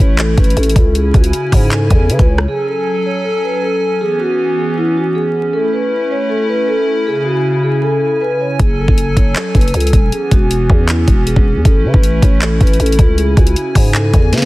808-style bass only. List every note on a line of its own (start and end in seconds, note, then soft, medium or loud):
0.00 0.36 A1 loud
0.38 0.56 A1 loud
0.57 0.75 A1 loud
0.76 1.13 C#2 loud
1.14 1.32 C#2 loud
1.52 1.89 G#2 loud
1.90 2.11 E2 loud
2.10 2.19 C#3 loud
2.19 2.47 C#2 loud
8.59 8.87 F#1 loud
8.88 9.16 F#1 loud
9.17 9.35 F#1 loud
9.55 9.73 F#1 loud
9.74 9.92 C#2 loud
9.93 10.12 E1 loud
10.31 10.68 E1 loud
10.70 11.06 E2 loud
11.08 11.35 E1 loud
11.36 11.57 E1 loud
11.56 11.65 E2 loud
11.65 11.86 A1 loud
11.84 11.93 C#3 loud
11.94 12.21 A1 loud
12.22 12.59 A1 loud
12.61 12.79 A1 loud
12.80 12.98 A1 loud
12.99 13.36 C#2 loud
13.37 13.55 C#2 loud
13.75 14.12 G#2 loud
14.13 14.34 E2 loud
14.33 14.45 C#3 loud